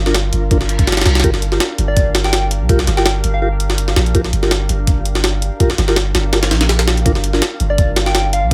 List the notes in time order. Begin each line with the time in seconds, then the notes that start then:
Already playing: G1 D4 F4 A#4 F5
0.06 D4 F4 A#4, snare
0.14 snare, closed hi-hat
0.33 G1, closed hi-hat
0.51 D4 F4 A#4, kick, closed hi-hat, reverse cymbal
0.61 snare
0.69 closed hi-hat
0.79 kick, closed hi-hat
0.87 snare, closed hi-hat
0.92 snare, closed hi-hat
0.97 snare, closed hi-hat
1.01 snare, closed hi-hat
1.06 C2, snare, closed hi-hat
1.15 snare, closed hi-hat
1.20 snare, closed hi-hat
1.24 G1 D4 F4 G4 A#4 F5, kick, closed hi-hat
1.34 snare
1.42 closed hi-hat
1.52 F4 G4 A#4, snare
1.60 snare, closed hi-hat
1.78 G1, closed hi-hat
1.88 D5
1.97 kick, closed hi-hat
2.15 snare, closed hi-hat
2.24 G5, snare
2.33 snare, closed hi-hat
2.51 closed hi-hat
2.61 C2
2.69 D4 F4 G4 A#4 F5, kick, closed hi-hat
2.79 snare
2.87 G1, snare, closed hi-hat
2.97 F4 G4 A#4 G5, snare
3.06 G5, snare, closed hi-hat
3.24 G1, closed hi-hat
3.34 F5
3.42 F4 G4 A#4 F5
3.60 closed hi-hat
3.70 snare
3.78 closed hi-hat
3.88 snare
3.96 A#1, snare, closed hi-hat
4.06 closed hi-hat
4.15 D4 F4 G4 A#4 F5, kick, closed hi-hat
4.25 snare
4.33 G1, closed hi-hat
4.43 F4 G4 A#4, snare
4.51 snare, closed hi-hat
4.69 G1, closed hi-hat
4.87 kick, closed hi-hat
5.05 closed hi-hat
5.15 snare
5.24 snare, closed hi-hat
5.42 closed hi-hat
5.60 D4 F4 G4 A#4 F5, kick, closed hi-hat
5.70 snare
5.78 G1, snare, closed hi-hat
5.88 F4 G4 A#4, snare
5.96 snare, closed hi-hat
6.15 G1, snare, closed hi-hat
6.33 F4 G4 A#4, snare, closed hi-hat
6.43 snare, closed hi-hat
6.51 A#1, snare, closed hi-hat
6.61 snare, closed hi-hat
6.69 snare, closed hi-hat
6.79 snare, closed hi-hat
6.88 snare, closed hi-hat
6.97 closed hi-hat
7.06 G1 D4 F4 A#4 F5, kick, closed hi-hat
7.15 snare
7.24 closed hi-hat
7.33 D4 F4 A#4, snare
7.42 snare, closed hi-hat
7.60 G1, closed hi-hat
7.70 D5
7.78 kick, closed hi-hat
7.96 snare, closed hi-hat
8.06 G5, snare
8.15 snare, closed hi-hat
8.33 F5, closed hi-hat
8.43 C2